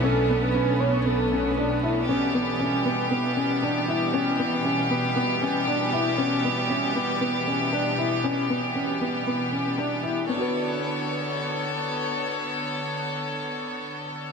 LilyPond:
<<
  \new Staff \with { instrumentName = "Soft synth lead" } { \time 4/4 \key b \minor \tempo 4 = 117 a'8. b'8. cis''8 a'4. r8 | r1 | r1 | r1 |
r1 | r1 | r1 | }
  \new Staff \with { instrumentName = "Felt piano" } { \time 4/4 \key b \minor cis'8 b8 cis'8 b8 b8 cis'8 d'8 e'8 | cis'8 b8 cis'8 b8 b8 cis'8 d'8 e'8 | cis'8 b8 cis'8 b8 b8 cis'8 d'8 e'8 | cis'8 b8 cis'8 b8 b8 cis'8 d'8 e'8 |
cis'8 b8 cis'8 b8 b8 cis'8 d'8 e'8 | <b d' fis' b'>1~ | <b d' fis' b'>1 | }
  \new Staff \with { instrumentName = "String section" } { \time 4/4 \key b \minor <a b cis' d'>1 | <b, e g b g'>1~ | <b, e g b g'>1~ | <b, e g b g'>1~ |
<b, e g b g'>1 | <d b a' cis''>1~ | <d b a' cis''>1 | }
  \new Staff \with { instrumentName = "Double bass section" } { \clef bass \time 4/4 \key b \minor b,,1 | r1 | r1 | r1 |
r1 | r1 | r1 | }
>>